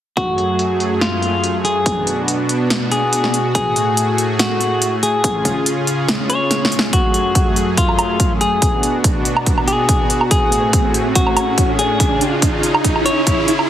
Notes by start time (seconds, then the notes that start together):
0.17 F#2 F#3 A3 F#4 G#4, kick, closed hi-hat
0.38 closed hi-hat
0.59 closed hi-hat
0.80 closed hi-hat
1.01 F4, snare, closed hi-hat
1.23 closed hi-hat
1.44 closed hi-hat
1.65 G#4, closed hi-hat
1.86 B2 B3 D4 F#4, kick, closed hi-hat
2.07 closed hi-hat
2.28 closed hi-hat
2.49 closed hi-hat
2.70 snare, closed hi-hat
2.92 G#4, closed hi-hat
3.13 closed hi-hat
3.24 snare
3.34 closed hi-hat
3.55 A2 A3 G#4, kick, closed hi-hat
3.76 closed hi-hat
3.97 closed hi-hat
4.18 closed hi-hat
4.39 F#4, snare, closed hi-hat
4.61 closed hi-hat
4.82 closed hi-hat
5.03 G#4, closed hi-hat
5.24 C#3 C#4 F4 G#4, kick, closed hi-hat
5.45 kick, closed hi-hat
5.66 closed hi-hat
5.87 closed hi-hat
6.08 snare, closed hi-hat
6.30 C#5, closed hi-hat
6.51 snare, closed hi-hat
6.65 snare
6.72 closed hi-hat
6.79 snare
6.93 F#2 F#3 A3 F#4 G#4, kick, closed hi-hat, riser
7.14 closed hi-hat
7.35 kick, closed hi-hat
7.56 closed hi-hat
7.77 F4, kick, closed hi-hat
7.89 low woodblock
7.99 closed hi-hat, low woodblock
8.20 kick, closed hi-hat
8.41 G#4, closed hi-hat
8.62 B2 B3 D4 F#4, kick, closed hi-hat
8.83 closed hi-hat
9.04 kick, closed hi-hat
9.25 closed hi-hat
9.37 low woodblock
9.46 kick, closed hi-hat
9.58 low woodblock
9.68 G#4, closed hi-hat
9.89 kick, closed hi-hat
10.10 closed hi-hat
10.21 low woodblock
10.31 A2 A3 G#4, kick, closed hi-hat
10.52 closed hi-hat
10.73 kick, closed hi-hat
10.94 closed hi-hat
11.15 F#4, kick, closed hi-hat
11.27 low woodblock
11.37 closed hi-hat, low woodblock
11.58 kick, closed hi-hat
11.79 G#4, closed hi-hat
12.00 C#3 C#4 F4, kick, closed hi-hat
12.21 closed hi-hat
12.42 kick, closed hi-hat
12.63 closed hi-hat
12.75 low woodblock
12.84 kick, closed hi-hat
12.96 low woodblock
13.06 C#5, closed hi-hat
13.27 kick, closed hi-hat
13.48 closed hi-hat
13.59 low woodblock